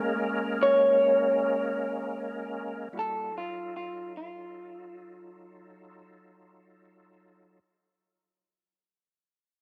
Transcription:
Already playing: clean electric guitar G#3, tonewheel organ G#3 A#3 C#4 A#4
0.63 clean electric guitar C#5
2.93 tonewheel organ G3 A#3 E4 F#4
2.99 clean electric guitar A4
3.32 tonewheel organ F#3 D#4 F4 A4
3.38 clean electric guitar F4
3.77 clean electric guitar F4
4.17 clean electric guitar F4

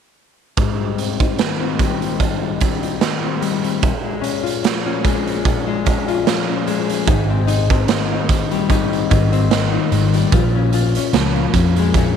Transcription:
0.57 nylon-string guitar G#2, kick, closed hi-hat
0.80 nylon-string guitar G3
0.97 nylon-string guitar C4, closed hi-hat
1.20 nylon-string guitar D#4, kick, closed hi-hat
1.38 nylon-string guitar D#3, snare, closed hi-hat
1.60 nylon-string guitar C4
1.78 nylon-string guitar G3, kick, closed hi-hat
2.00 nylon-string guitar C4, closed hi-hat
2.19 nylon-string guitar G#2, kick, closed hi-hat
2.41 nylon-string guitar G3
2.60 nylon-string guitar C4, kick, closed hi-hat
2.83 nylon-string guitar D#4, closed hi-hat
3.01 nylon-string guitar D#3, snare, closed hi-hat
3.24 nylon-string guitar C4
3.41 nylon-string guitar G3, closed hi-hat
3.64 nylon-string guitar C4, closed hi-hat
3.82 nylon-string guitar A#2, kick, closed hi-hat
4.04 nylon-string guitar G#3
4.21 nylon-string guitar C#4, closed hi-hat
4.44 nylon-string guitar F4, closed hi-hat
4.63 nylon-string guitar F3, snare, closed hi-hat
4.86 nylon-string guitar C#4
5.04 nylon-string guitar G#3, kick, closed hi-hat
5.26 nylon-string guitar C#4, closed hi-hat
5.44 nylon-string guitar A#2, kick, closed hi-hat
5.67 nylon-string guitar G#3
5.85 nylon-string guitar C#4, kick, closed hi-hat
6.08 nylon-string guitar F4, closed hi-hat
6.26 nylon-string guitar F3, snare, closed hi-hat
6.49 nylon-string guitar C#4
6.67 nylon-string guitar G#3, closed hi-hat
6.89 nylon-string guitar C#4, closed hi-hat
7.07 picked electric bass G#1, nylon-string guitar G#2 D#4, kick, closed hi-hat
7.30 nylon-string guitar C4
7.47 nylon-string guitar D#4, closed hi-hat
7.70 nylon-string guitar C4, kick, closed hi-hat
7.88 nylon-string guitar D#3, snare, closed hi-hat
8.12 nylon-string guitar D#4
8.29 nylon-string guitar C4, kick, closed hi-hat
8.51 nylon-string guitar G3, closed hi-hat
8.70 nylon-string guitar G#2 D#4, kick, closed hi-hat
8.93 nylon-string guitar C4, closed hi-hat
9.10 picked electric bass G#1, nylon-string guitar D#4, kick, closed hi-hat
9.32 nylon-string guitar C4, closed hi-hat
9.51 nylon-string guitar D#3, snare, closed hi-hat
9.73 nylon-string guitar D#4
9.92 picked electric bass G#1, nylon-string guitar C4, closed hi-hat
10.14 nylon-string guitar G3, closed hi-hat
10.32 picked electric bass A#1, nylon-string guitar A#2 F4, kick, closed hi-hat
10.55 nylon-string guitar C#4
10.73 nylon-string guitar F4, closed hi-hat
10.95 nylon-string guitar C#4, closed hi-hat
11.13 picked electric bass C#2, nylon-string guitar F3, snare, closed hi-hat
11.36 nylon-string guitar F4, closed hi-hat
11.54 picked electric bass F2, nylon-string guitar C#4, kick, closed hi-hat
11.76 nylon-string guitar G#3, closed hi-hat
11.94 nylon-string guitar A#2 F4, kick, closed hi-hat

